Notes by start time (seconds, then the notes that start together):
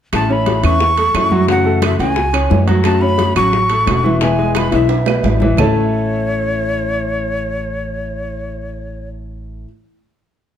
0.12 A1 E3 A3 C#4 E4 A5, high bongo, high conga, high timbale, claves
0.30 C#4 C#5 B5, high bongo, high conga
0.46 high bongo, high conga, high timbale, low timbale
0.63 E2 E3 A3 C#4 E4 C#6, high conga, high timbale, claves
0.80 muted nylon-string guitar stroke, high bongo, high conga
0.98 A3 A4, high bongo, high conga, high timbale
1.14 F#2 E3 A3 C#4 E4, high bongo, low bongo, high conga, high timbale, low timbale, claves
1.31 F#3 F#4, high bongo, high conga
1.47 C#3 E3 F#3 A3 C#4 F#4 F#5, high bongo, high conga, high timbale
1.65 A3 A4, high bongo, high conga
1.82 E5, high bongo, high conga, high timbale, low timbale, claves
1.99 C#2 E3 A3 C#4 F#4 F#5 G#5, high timbale
2.16 muted nylon-string guitar stroke, high bongo, high conga
2.33 C#4 C#5, high bongo, high conga, high timbale, claves
2.50 F#2 E3 A3 C#4 F#4, high bongo, low bongo, high conga, low timbale
2.67 F#3 F#4, high bongo, high conga, high timbale
2.84 D3 A3 C#4 F#4 A5, high bongo, high conga, high timbale, claves
3.01 C#4 C#5 B5, high bongo, high conga
3.18 high bongo, high conga, high timbale, low timbale
3.36 A1 F#3 A3 C#4 F#4 C#6, high conga, high timbale, claves
3.53 muted nylon-string guitar stroke, high bongo, high conga
3.70 A3 A4, high bongo, high conga, high timbale
3.87 E1 D3 A3 C#4, high bongo, low bongo, high conga, high timbale, low timbale, claves
3.91 F#4
4.04 E3 E4, high bongo, high conga
4.21 B2 E3 G#3 B3 E4 G#5, high bongo, high conga, high timbale
4.39 G#3 G#4, high bongo, high conga
4.55 B5, high bongo, high conga, high timbale, low timbale, claves
4.71 B1 E3 G#3 B3 E4 E5, high bongo, high timbale
4.88 muted nylon-string guitar stroke, high conga, high timbale
5.06 B3 B4, high conga, low timbale, claves
5.23 A1 E3 G#3 B3 E4, high conga, low timbale
5.40 E3 E4, low bongo, high conga, low timbale
5.56 A1 A2 E3 A3 C#4 E4 A4 C#5 E5 A5, low bongo, low conga, low timbale, claves